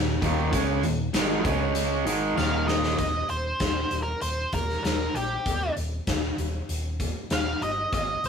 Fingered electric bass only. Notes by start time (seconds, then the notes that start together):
Already playing: D#1
0.23 D#1
0.53 C#2
0.82 D#1
1.13 G#1
1.45 C#2
2.06 G#1
2.37 D#1
2.99 D#1
3.29 D#1
3.60 D#1
3.91 D#1
4.22 D#1
4.53 D#1
4.84 D#1
5.14 A#1
5.46 D#1
5.76 D#1
6.07 D#1
6.38 D#1
6.68 D#1
7.30 D#1
7.61 G1
7.93 G#1
8.24 G#1